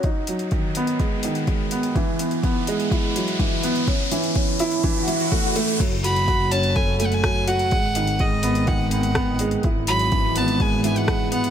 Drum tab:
CC |----------------|----------------|----------------|x---------------|
HH |x-xxx-xxx-xxx-xx|x-xxx-xxx-xxx-xx|x-xxx-xxx-xxx-xx|x-xxx-xxx-xxx-xx|
SD |----------------|----------------|----------------|------------r---|
BD |o---o---o---o---|o---o---o---o---|o---o---o---o---|o---o---o---o---|

CC |----------------|----------------|
HH |x-xxx-xxx-xxx-xx|x-xxx-xxx-xxx-xx|
SD |------------r---|------------r---|
BD |o---o---o---o---|o---o---o---o---|